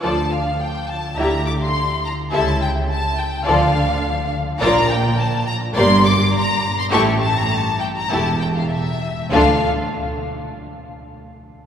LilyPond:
<<
  \new Staff \with { instrumentName = "Violin section" } { \time 4/4 \key d \minor \tempo 4 = 103 a''8 f''8 g''8 a''8 bes''8 d'''16 c'''8. bes''8 | a''8 g''8 a''8 g''8 f''4. r8 | bes''8 g''8 a''8 bes''8 c'''8 d'''8 bes''8. c'''16 | cis'''8 a''16 bes''16 a''8 g''16 bes''16 a''8 g''16 f''16 e''4 |
f''8 r2. r8 | }
  \new Staff \with { instrumentName = "Violin section" } { \time 4/4 \key d \minor <a' d''>8 r4. <g' e''>8 r4. | <a' e''>8 r4. <a' d''>8 r4. | <bes' d''>8 r4. <bes' d''>8 r4. | <g' a'>8 r4. <g' a'>8 r4. |
<f' a'>8 r2. r8 | }
  \new Staff \with { instrumentName = "Viola section" } { \time 4/4 \key d \minor <f f'>8 r4. <g e'>8 r4. | <g e'>8 r4. <f f'>8 r4. | <f f'>8 r4. <bes g'>8 r4. | <a e'>8 r4. <a e'>8 r4. |
<a d'>8 r2. r8 | }
  \new Staff \with { instrumentName = "Cello section" } { \clef bass \time 4/4 \key d \minor d4 r4 d4 r4 | cis4 r4 d4 r4 | bes,4 r4 g,4 r4 | a,4 r4 e,4 r4 |
d8 r2. r8 | }
  \new Staff \with { instrumentName = "Double bass section" } { \clef bass \time 4/4 \key d \minor d,4 r4 d,4 r4 | cis,4 r4 d,4 r4 | bes,,4 r4 g,,4 r4 | a,,4 r4 e,,4 r4 |
d,8 r2. r8 | }
>>